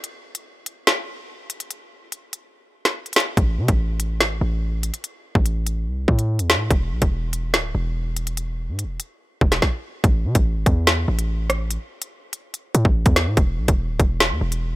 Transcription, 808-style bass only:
3.37 3.60 A1 loud
3.58 3.68 C3 loud
3.68 4.22 A1 loud
4.21 4.32 G#1 loud
4.31 4.41 A1 loud
4.41 4.91 A1 loud
5.35 5.89 A1 loud
5.87 6.07 C2 loud
6.08 6.41 A2 loud
6.39 6.56 E2 loud
6.55 6.70 A2 loud
6.71 6.93 E1 loud
6.91 7.01 B1 loud
7.02 7.55 E1 loud
7.54 7.74 D1 loud
7.75 8.70 E1 loud
8.68 8.86 G#2 loud
8.84 8.99 E1 loud
9.41 9.61 E1 loud
10.04 10.26 A1 loud
10.25 10.35 C3 medium
10.35 10.57 A1 loud
10.56 10.66 G#1 loud
10.66 11.06 E2 loud
11.08 11.78 A1 loud
12.75 12.85 A2 loud
12.85 13.05 A1 loud
13.06 13.28 E2 loud
13.27 13.37 A2 loud
13.37 13.59 E1 loud
13.58 13.68 B1 loud
13.68 13.91 E1 loud
13.89 13.99 D1 loud
14.00 14.32 E1 loud
14.31 14.41 E2 loud
14.41 14.76 E1 loud

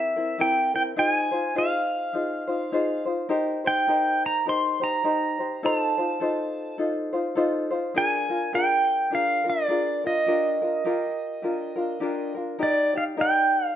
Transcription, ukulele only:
0.00 0.16 C4 medium
0.00 0.16 E4 medium
0.00 0.16 G4 medium
0.00 0.15 A#4 medium
0.16 0.38 C4 soft
0.16 0.38 E4 medium
0.16 0.39 A#4 medium
0.38 0.74 C4 medium
0.38 0.73 E4 medium
0.38 0.73 G4 medium
0.38 0.73 A#4 medium
0.74 0.96 C4 soft
0.74 0.97 E4 soft
0.74 0.97 A#4 medium
0.96 1.32 D#4 medium
0.96 1.31 F4 medium
0.96 1.31 G#4 medium
0.96 1.30 C5 medium
1.31 1.54 D#4 soft
1.31 1.55 F4 soft
1.31 1.55 C5 medium
1.55 2.13 D#4 medium
1.55 2.13 F4 medium
1.55 2.12 G#4 medium
1.55 2.14 C5 medium
2.13 2.48 D#4 medium
2.13 2.47 F4 medium
2.13 2.48 G#4 medium
2.13 2.46 C5 medium
2.47 2.71 D#4 soft
2.47 2.72 F4 soft
2.47 2.72 C5 medium
2.72 3.06 D#4 medium
2.72 3.05 F4 medium
2.72 3.07 G#4 medium
2.72 3.04 C5 medium
3.05 3.28 D#4 soft
3.05 3.30 F4 soft
3.05 3.29 C5 medium
3.29 3.64 D#4 medium
3.29 3.64 G4 loud
3.29 3.64 A#4 medium
3.29 3.63 C5 medium
3.64 3.87 D#4 soft
3.64 3.88 G4 soft
3.64 3.88 C5 medium
3.88 4.46 D#4 medium
3.88 4.46 G4 medium
3.88 4.44 A#4 medium
3.88 4.47 C5 medium
4.46 4.81 D#4 medium
4.46 4.80 G4 medium
4.46 4.80 A#4 medium
4.46 4.79 C5 medium
4.80 5.03 D#4 soft
4.80 5.04 G4 soft
4.80 5.04 C5 medium
5.04 5.39 D#4 medium
5.04 5.39 G4 medium
5.04 5.39 A#4 medium
5.04 5.38 C5 medium
5.39 5.62 D#4 soft
5.39 5.63 G4 soft
5.39 5.63 C5 medium
5.63 5.97 D#4 medium
5.63 5.97 F4 medium
5.63 5.97 A4 medium
5.63 5.96 C5 medium
5.98 6.20 D#4 soft
5.98 6.20 F4 soft
5.98 6.21 C5 medium
6.20 6.78 D#4 medium
6.20 6.79 F4 medium
6.20 6.77 A4 medium
6.20 6.78 C5 medium
6.78 7.13 D#4 medium
6.78 7.12 F4 medium
6.78 7.13 A4 medium
6.78 7.11 C5 medium
7.13 7.35 D#4 soft
7.13 7.36 F4 medium
7.13 7.36 C5 medium
7.35 7.71 D#4 medium
7.35 7.70 F4 loud
7.35 7.71 A4 medium
7.35 7.69 C5 medium
7.71 7.95 D#4 soft
7.71 7.95 F4 medium
7.71 7.95 C5 medium
7.94 8.30 D4 medium
7.94 8.29 F4 medium
7.94 8.29 G#4 medium
7.94 8.28 A#4 medium
8.29 8.52 D4 soft
8.29 8.53 F4 medium
8.29 8.53 A#4 medium
8.53 9.11 D4 medium
8.53 9.11 F4 medium
8.53 9.09 G#4 medium
8.53 9.12 A#4 medium
9.10 9.45 D4 medium
9.10 9.44 F4 medium
9.10 9.45 G#4 medium
9.10 9.43 A#4 medium
9.44 9.68 D4 soft
9.44 9.69 F4 medium
9.44 9.68 A#4 medium
9.68 10.04 D4 medium
9.68 10.04 F4 medium
9.68 10.03 G#4 medium
9.68 10.03 A#4 medium
10.04 10.26 D4 soft
10.04 10.27 F4 medium
10.04 10.27 A#4 soft
10.26 10.61 D4 medium
10.26 10.61 F4 medium
10.26 10.61 G4 medium
10.26 10.60 A#4 medium
10.62 10.86 D4 soft
10.62 10.85 F4 soft
10.62 10.85 A#4 medium
10.85 11.42 F4 medium
10.85 11.42 G4 medium
10.85 11.44 A#4 medium
11.42 11.77 D4 medium
11.42 11.76 F4 medium
11.42 11.77 G4 medium
11.42 11.75 A#4 medium
11.76 12.00 D4 medium
11.76 12.00 F4 medium
11.76 12.00 A#4 medium
12.00 12.35 D4 medium
12.00 12.35 F4 medium
12.00 12.35 G4 medium
12.00 12.33 A#4 medium
12.35 12.59 D4 soft
12.35 12.59 F4 soft
12.35 12.57 A#4 medium
12.58 12.93 D#4 medium
12.58 12.94 G4 medium
12.58 12.93 A#4 medium
12.58 12.93 D5 medium
12.94 13.16 D#4 soft
12.94 13.17 G4 soft
12.94 13.17 D5 medium
13.17 13.74 D#4 medium
13.17 13.75 G4 medium
13.17 13.74 A#4 medium
13.17 13.76 D5 medium

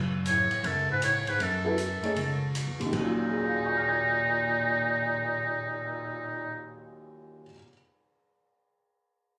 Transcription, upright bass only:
0.00 0.47 F#2 medium
0.51 muted upright bass stroke soft
0.63 1.23 C#2 medium
1.27 muted upright bass stroke soft
1.39 1.99 F#2 medium
2.03 muted upright bass stroke soft
2.16 2.63 C#2 medium
2.67 2.79 E2 medium
2.80 2.92 C#2 medium
2.93 7.45 D#2 medium

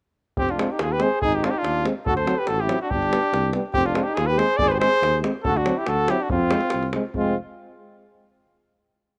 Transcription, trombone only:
0.58 0.66 G#3 soft
0.99 1.08 G#3 medium
1.41 1.50 G#3 medium
1.84 1.93 G#3 medium
2.25 2.34 F#3 medium
2.67 2.76 F#3 medium
3.10 3.19 G3 soft
3.54 3.62 G3 soft
3.94 4.03 G#3 soft
4.37 4.45 G#3 medium
4.79 4.88 G#3 medium
5.22 5.30 G#3 medium
5.65 5.74 F#3 medium
6.07 6.16 F#3 medium
6.51 6.59 G#3 medium
6.95 7.03 G#3 soft
7.16 7.36 G#3 medium

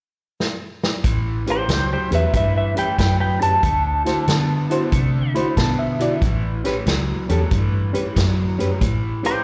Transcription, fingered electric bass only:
1.04 1.44 A1 medium
1.68 1.95 C#2 medium
2.11 2.25 E2 medium
2.33 2.74 G2 medium
2.98 3.38 F#2 medium
3.63 4.03 D2 medium
4.27 4.68 D3 medium
4.92 5.32 C3 medium
5.57 5.97 B2 medium
6.22 6.62 A1 medium
6.86 7.13 C#2 medium
7.29 7.43 E2 medium
7.51 7.91 G2 medium
8.16 8.56 F#2 medium
8.81 9.21 A2 medium

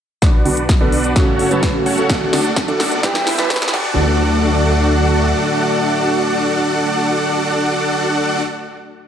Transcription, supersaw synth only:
0.22 0.43 D4 medium
0.22 0.43 F#4 medium
0.22 0.43 B4 medium
0.22 0.43 D5 medium
0.22 0.43 F#5 loud
0.46 0.64 D4 medium
0.46 0.64 F#4 medium
0.46 0.64 B4 medium
0.46 0.64 D5 medium
0.46 0.64 F#5 medium
0.81 1.13 D4 medium
0.81 1.13 F#4 medium
0.81 1.13 B4 medium
0.81 1.13 D5 medium
0.81 1.13 F#5 medium
1.16 1.48 C#4 loud
1.16 1.48 F#4 medium
1.16 1.48 A4 medium
1.16 1.48 C#5 medium
1.16 1.48 F#5 loud
1.51 1.69 C#4 medium
1.51 1.69 F#4 medium
1.51 1.69 A4 medium
1.51 1.69 C#5 medium
1.51 1.69 A5 medium
1.86 2.07 C#4 medium
1.86 2.07 F#4 medium
1.86 2.07 A4 medium
1.86 2.07 C#5 medium
1.86 2.07 F#5 loud
2.10 2.30 D4 medium
2.10 2.30 F#4 medium
2.10 2.30 A4 medium
2.10 2.30 D5 medium
2.10 2.30 F#5 loud
2.33 2.51 D4 medium
2.33 2.51 F#4 medium
2.33 2.51 A4 medium
2.33 2.51 D5 medium
2.33 2.51 F#5 loud
2.68 3.01 D4 medium
2.68 3.01 F#4 medium
2.68 3.01 A4 medium
2.68 3.01 D5 medium
2.68 3.01 F#5 loud
3.03 3.36 E4 loud
3.03 3.36 G4 medium
3.03 3.36 B4 medium
3.03 3.36 E5 medium
3.03 3.36 G5 loud
3.38 3.57 E4 medium
3.38 3.57 G4 medium
3.38 3.57 B4 medium
3.38 3.57 E5 medium
3.38 3.57 A5 medium
3.74 8.42 D4 medium
3.74 8.42 F#4 medium
3.74 8.42 A4 medium
3.74 8.42 D5 medium
3.74 8.42 F#5 loud

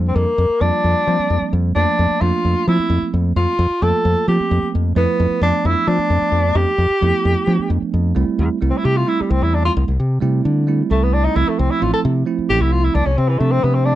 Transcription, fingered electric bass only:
0.00 0.11 F2 medium
0.16 0.25 F2 medium
0.38 0.47 F2 medium
0.49 muted fingered electric bass stroke soft
0.61 0.70 F2 medium
0.84 0.93 F2 medium
1.07 1.16 F3 medium
1.19 muted fingered electric bass stroke soft
1.30 1.39 F2 medium
1.42 muted fingered electric bass stroke soft
1.53 1.71 F2 medium
1.76 1.85 F2 medium
1.99 2.08 F2 medium
2.10 muted fingered electric bass stroke soft
2.21 2.31 F2 medium
2.45 2.54 F2 medium
2.67 2.76 F3 medium
2.79 muted fingered electric bass stroke soft
2.90 2.99 F2 medium
3.02 muted fingered electric bass stroke soft
3.14 3.32 F2 medium
3.36 3.45 F2 medium
3.59 3.68 F2 loud
3.70 muted fingered electric bass stroke soft
3.82 3.91 F2 medium
4.05 4.14 F2 medium
4.28 4.37 F3 medium
4.40 muted fingered electric bass stroke soft
4.51 4.60 F2 medium
4.62 muted fingered electric bass stroke soft
4.75 4.92 F2 medium
4.96 5.05 F2 medium
5.20 5.28 F2 loud
5.30 muted fingered electric bass stroke soft
5.41 5.51 F2 medium
5.65 5.74 F2 medium
5.87 5.97 F3 medium
5.98 muted fingered electric bass stroke soft
6.10 6.19 F2 medium
6.22 muted fingered electric bass stroke soft
6.32 6.51 F2 medium
6.55 6.65 F2 medium
6.78 6.88 F2 medium
6.90 muted fingered electric bass stroke soft
7.02 7.11 F2 medium
7.25 7.34 F2 medium
7.47 7.56 F3 medium
7.59 muted fingered electric bass stroke soft
7.70 7.79 F2 medium
7.82 muted fingered electric bass stroke soft
7.94 8.12 F2 medium
8.16 8.25 C2 medium
8.28 muted fingered electric bass stroke soft
8.39 8.48 E2 medium
8.62 8.71 C2 medium
8.85 9.03 C3 medium
9.20 muted fingered electric bass stroke soft
9.30 9.39 C2 medium
9.42 9.69 E2 medium
9.77 9.85 C2 loud
9.88 9.97 C2 medium
10.00 10.17 C3 medium
10.22 10.40 C3 medium
10.45 10.81 D3 medium
10.91 11.27 C2 medium
11.36 11.45 C2 loud
11.59 11.68 C2 medium
11.82 11.91 A1 medium
12.05 12.23 C3 medium
12.38 muted fingered electric bass stroke soft
12.50 12.59 A1 medium
12.61 12.88 C2 medium
12.95 13.04 C2 loud
13.06 13.15 C2 medium
13.18 13.36 C3 medium
13.40 13.59 C3 medium
13.64 13.95 C3 medium

